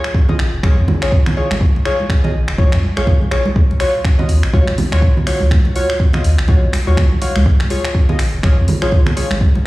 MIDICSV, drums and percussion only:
0, 0, Header, 1, 2, 480
1, 0, Start_track
1, 0, Key_signature, -6, "minor"
1, 0, Tempo, 487805
1, 1585, Time_signature, 4, 2, 24, 8
1, 9513, End_track
2, 0, Start_track
2, 0, Title_t, "Drums"
2, 43, Note_on_c, 9, 26, 94
2, 141, Note_off_c, 9, 26, 0
2, 142, Note_on_c, 9, 36, 102
2, 241, Note_off_c, 9, 36, 0
2, 283, Note_on_c, 9, 64, 100
2, 288, Note_on_c, 9, 62, 37
2, 381, Note_off_c, 9, 64, 0
2, 385, Note_on_c, 9, 26, 94
2, 386, Note_off_c, 9, 62, 0
2, 484, Note_off_c, 9, 26, 0
2, 623, Note_on_c, 9, 36, 127
2, 625, Note_on_c, 9, 26, 83
2, 626, Note_on_c, 9, 62, 50
2, 627, Note_on_c, 9, 63, 69
2, 721, Note_off_c, 9, 36, 0
2, 723, Note_off_c, 9, 26, 0
2, 725, Note_off_c, 9, 62, 0
2, 726, Note_off_c, 9, 63, 0
2, 866, Note_on_c, 9, 64, 110
2, 867, Note_on_c, 9, 63, 67
2, 964, Note_off_c, 9, 64, 0
2, 965, Note_off_c, 9, 63, 0
2, 1003, Note_on_c, 9, 26, 91
2, 1005, Note_on_c, 9, 62, 41
2, 1101, Note_off_c, 9, 26, 0
2, 1103, Note_off_c, 9, 62, 0
2, 1103, Note_on_c, 9, 36, 111
2, 1202, Note_off_c, 9, 36, 0
2, 1243, Note_on_c, 9, 26, 86
2, 1251, Note_on_c, 9, 64, 104
2, 1342, Note_off_c, 9, 26, 0
2, 1348, Note_on_c, 9, 62, 49
2, 1349, Note_off_c, 9, 64, 0
2, 1446, Note_off_c, 9, 62, 0
2, 1485, Note_on_c, 9, 26, 89
2, 1487, Note_on_c, 9, 63, 91
2, 1583, Note_off_c, 9, 26, 0
2, 1583, Note_on_c, 9, 36, 122
2, 1585, Note_off_c, 9, 63, 0
2, 1681, Note_off_c, 9, 36, 0
2, 1735, Note_on_c, 9, 62, 52
2, 1825, Note_on_c, 9, 26, 94
2, 1833, Note_off_c, 9, 62, 0
2, 1923, Note_off_c, 9, 26, 0
2, 1969, Note_on_c, 9, 63, 58
2, 2062, Note_on_c, 9, 36, 102
2, 2064, Note_on_c, 9, 26, 82
2, 2067, Note_off_c, 9, 63, 0
2, 2161, Note_off_c, 9, 36, 0
2, 2162, Note_off_c, 9, 26, 0
2, 2206, Note_on_c, 9, 62, 41
2, 2210, Note_on_c, 9, 64, 90
2, 2305, Note_off_c, 9, 62, 0
2, 2308, Note_off_c, 9, 64, 0
2, 2440, Note_on_c, 9, 26, 96
2, 2538, Note_off_c, 9, 26, 0
2, 2543, Note_on_c, 9, 36, 127
2, 2546, Note_on_c, 9, 62, 49
2, 2641, Note_off_c, 9, 36, 0
2, 2644, Note_off_c, 9, 62, 0
2, 2680, Note_on_c, 9, 26, 76
2, 2778, Note_off_c, 9, 26, 0
2, 2786, Note_on_c, 9, 63, 72
2, 2884, Note_off_c, 9, 63, 0
2, 2917, Note_on_c, 9, 62, 35
2, 2923, Note_on_c, 9, 26, 91
2, 2925, Note_on_c, 9, 63, 72
2, 3015, Note_off_c, 9, 62, 0
2, 3021, Note_off_c, 9, 26, 0
2, 3021, Note_on_c, 9, 64, 85
2, 3023, Note_on_c, 9, 36, 108
2, 3024, Note_off_c, 9, 63, 0
2, 3119, Note_off_c, 9, 64, 0
2, 3121, Note_off_c, 9, 36, 0
2, 3165, Note_on_c, 9, 63, 69
2, 3261, Note_on_c, 9, 26, 94
2, 3264, Note_off_c, 9, 63, 0
2, 3269, Note_on_c, 9, 62, 47
2, 3360, Note_off_c, 9, 26, 0
2, 3368, Note_off_c, 9, 62, 0
2, 3400, Note_on_c, 9, 63, 93
2, 3498, Note_off_c, 9, 63, 0
2, 3502, Note_on_c, 9, 36, 121
2, 3600, Note_off_c, 9, 36, 0
2, 3649, Note_on_c, 9, 62, 49
2, 3739, Note_on_c, 9, 26, 86
2, 3739, Note_on_c, 9, 46, 79
2, 3748, Note_off_c, 9, 62, 0
2, 3838, Note_off_c, 9, 26, 0
2, 3838, Note_off_c, 9, 46, 0
2, 3981, Note_on_c, 9, 26, 76
2, 3982, Note_on_c, 9, 36, 104
2, 4079, Note_off_c, 9, 26, 0
2, 4080, Note_off_c, 9, 36, 0
2, 4122, Note_on_c, 9, 62, 33
2, 4126, Note_on_c, 9, 64, 99
2, 4220, Note_off_c, 9, 62, 0
2, 4220, Note_on_c, 9, 46, 80
2, 4224, Note_off_c, 9, 64, 0
2, 4319, Note_off_c, 9, 46, 0
2, 4362, Note_on_c, 9, 26, 86
2, 4460, Note_off_c, 9, 26, 0
2, 4462, Note_on_c, 9, 36, 121
2, 4472, Note_on_c, 9, 62, 47
2, 4477, Note_on_c, 9, 63, 64
2, 4561, Note_off_c, 9, 36, 0
2, 4570, Note_off_c, 9, 62, 0
2, 4575, Note_off_c, 9, 63, 0
2, 4600, Note_on_c, 9, 26, 76
2, 4699, Note_off_c, 9, 26, 0
2, 4703, Note_on_c, 9, 46, 81
2, 4706, Note_on_c, 9, 63, 68
2, 4706, Note_on_c, 9, 64, 108
2, 4802, Note_off_c, 9, 46, 0
2, 4804, Note_off_c, 9, 64, 0
2, 4805, Note_off_c, 9, 63, 0
2, 4842, Note_on_c, 9, 62, 39
2, 4844, Note_on_c, 9, 26, 82
2, 4940, Note_off_c, 9, 62, 0
2, 4942, Note_off_c, 9, 26, 0
2, 4942, Note_on_c, 9, 36, 106
2, 5041, Note_off_c, 9, 36, 0
2, 5090, Note_on_c, 9, 64, 91
2, 5184, Note_on_c, 9, 26, 91
2, 5184, Note_on_c, 9, 46, 85
2, 5188, Note_off_c, 9, 64, 0
2, 5191, Note_on_c, 9, 62, 46
2, 5282, Note_off_c, 9, 26, 0
2, 5282, Note_off_c, 9, 46, 0
2, 5289, Note_off_c, 9, 62, 0
2, 5318, Note_on_c, 9, 63, 89
2, 5416, Note_off_c, 9, 63, 0
2, 5422, Note_on_c, 9, 36, 119
2, 5424, Note_on_c, 9, 26, 80
2, 5521, Note_off_c, 9, 36, 0
2, 5522, Note_off_c, 9, 26, 0
2, 5560, Note_on_c, 9, 62, 51
2, 5658, Note_off_c, 9, 62, 0
2, 5664, Note_on_c, 9, 46, 78
2, 5762, Note_off_c, 9, 46, 0
2, 5803, Note_on_c, 9, 26, 90
2, 5901, Note_off_c, 9, 26, 0
2, 5902, Note_on_c, 9, 36, 92
2, 6001, Note_off_c, 9, 36, 0
2, 6036, Note_on_c, 9, 62, 35
2, 6036, Note_on_c, 9, 64, 101
2, 6043, Note_on_c, 9, 26, 71
2, 6134, Note_off_c, 9, 64, 0
2, 6135, Note_off_c, 9, 62, 0
2, 6141, Note_off_c, 9, 26, 0
2, 6144, Note_on_c, 9, 46, 80
2, 6242, Note_off_c, 9, 46, 0
2, 6283, Note_on_c, 9, 26, 83
2, 6375, Note_on_c, 9, 62, 52
2, 6381, Note_off_c, 9, 26, 0
2, 6382, Note_on_c, 9, 36, 117
2, 6473, Note_off_c, 9, 62, 0
2, 6480, Note_off_c, 9, 36, 0
2, 6619, Note_on_c, 9, 63, 57
2, 6625, Note_on_c, 9, 26, 84
2, 6625, Note_on_c, 9, 46, 87
2, 6717, Note_off_c, 9, 63, 0
2, 6723, Note_off_c, 9, 26, 0
2, 6723, Note_off_c, 9, 46, 0
2, 6770, Note_on_c, 9, 62, 35
2, 6772, Note_on_c, 9, 63, 65
2, 6861, Note_on_c, 9, 36, 104
2, 6861, Note_on_c, 9, 64, 79
2, 6862, Note_on_c, 9, 26, 75
2, 6869, Note_off_c, 9, 62, 0
2, 6871, Note_off_c, 9, 63, 0
2, 6959, Note_off_c, 9, 36, 0
2, 6959, Note_off_c, 9, 64, 0
2, 6961, Note_off_c, 9, 26, 0
2, 7001, Note_on_c, 9, 63, 65
2, 7099, Note_off_c, 9, 63, 0
2, 7101, Note_on_c, 9, 46, 90
2, 7101, Note_on_c, 9, 62, 55
2, 7199, Note_off_c, 9, 46, 0
2, 7199, Note_off_c, 9, 62, 0
2, 7238, Note_on_c, 9, 26, 89
2, 7244, Note_on_c, 9, 63, 96
2, 7337, Note_off_c, 9, 26, 0
2, 7340, Note_on_c, 9, 36, 112
2, 7343, Note_off_c, 9, 63, 0
2, 7438, Note_off_c, 9, 36, 0
2, 7479, Note_on_c, 9, 26, 74
2, 7486, Note_on_c, 9, 62, 54
2, 7577, Note_off_c, 9, 26, 0
2, 7580, Note_on_c, 9, 46, 83
2, 7584, Note_off_c, 9, 62, 0
2, 7678, Note_off_c, 9, 46, 0
2, 7720, Note_on_c, 9, 26, 86
2, 7818, Note_off_c, 9, 26, 0
2, 7819, Note_on_c, 9, 36, 92
2, 7918, Note_off_c, 9, 36, 0
2, 7961, Note_on_c, 9, 62, 36
2, 7962, Note_on_c, 9, 64, 97
2, 8058, Note_on_c, 9, 26, 86
2, 8058, Note_on_c, 9, 46, 85
2, 8059, Note_off_c, 9, 62, 0
2, 8060, Note_off_c, 9, 64, 0
2, 8157, Note_off_c, 9, 26, 0
2, 8157, Note_off_c, 9, 46, 0
2, 8294, Note_on_c, 9, 63, 61
2, 8298, Note_on_c, 9, 26, 71
2, 8299, Note_on_c, 9, 36, 112
2, 8309, Note_on_c, 9, 62, 53
2, 8392, Note_off_c, 9, 63, 0
2, 8397, Note_off_c, 9, 26, 0
2, 8397, Note_off_c, 9, 36, 0
2, 8407, Note_off_c, 9, 62, 0
2, 8541, Note_on_c, 9, 46, 83
2, 8542, Note_on_c, 9, 63, 62
2, 8546, Note_on_c, 9, 64, 101
2, 8639, Note_off_c, 9, 46, 0
2, 8641, Note_off_c, 9, 63, 0
2, 8644, Note_off_c, 9, 64, 0
2, 8678, Note_on_c, 9, 26, 84
2, 8679, Note_on_c, 9, 62, 42
2, 8777, Note_off_c, 9, 26, 0
2, 8777, Note_off_c, 9, 62, 0
2, 8779, Note_on_c, 9, 36, 99
2, 8877, Note_off_c, 9, 36, 0
2, 8916, Note_on_c, 9, 64, 97
2, 8921, Note_on_c, 9, 26, 74
2, 9015, Note_off_c, 9, 64, 0
2, 9019, Note_off_c, 9, 26, 0
2, 9022, Note_on_c, 9, 46, 86
2, 9026, Note_on_c, 9, 62, 57
2, 9120, Note_off_c, 9, 46, 0
2, 9124, Note_off_c, 9, 62, 0
2, 9156, Note_on_c, 9, 63, 76
2, 9159, Note_on_c, 9, 26, 85
2, 9254, Note_off_c, 9, 63, 0
2, 9258, Note_off_c, 9, 26, 0
2, 9259, Note_on_c, 9, 36, 109
2, 9357, Note_off_c, 9, 36, 0
2, 9401, Note_on_c, 9, 62, 58
2, 9500, Note_off_c, 9, 62, 0
2, 9513, End_track
0, 0, End_of_file